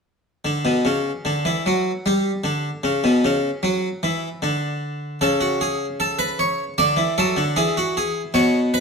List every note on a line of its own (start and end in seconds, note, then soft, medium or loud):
0.45 0.65 D3 medium
0.65 0.85 B2 medium
0.85 1.10 C#3 medium
1.25 1.45 D3 medium
1.45 1.65 E3 medium
1.66 1.91 F#3 medium
2.06 2.30 G3 medium
2.44 2.68 D3 medium
2.84 3.03 C#3 medium
3.04 3.23 B2 medium
3.25 3.49 C#3 medium
3.63 3.87 F#3 medium
4.03 4.27 E3 medium
4.42 5.19 D3 medium
5.21 6.73 C#3 medium
5.21 5.40 A4 medium
5.41 5.59 F#4 medium
5.61 5.85 G#4 medium
6.00 6.18 A4 medium
6.19 6.37 B4 medium
6.39 6.63 C#5 medium
6.78 6.97 D3 medium
6.78 7.02 D5 medium
6.97 7.16 E3 medium
7.18 7.36 F#3 medium
7.18 7.42 A4 medium
7.37 7.55 D3 medium
7.56 8.32 E3 medium
7.56 7.75 G#4 medium
7.77 7.95 F#4 medium
7.97 8.21 G#4 medium
8.34 8.80 B2 medium
8.34 8.58 C#5 medium
8.74 8.80 B4 medium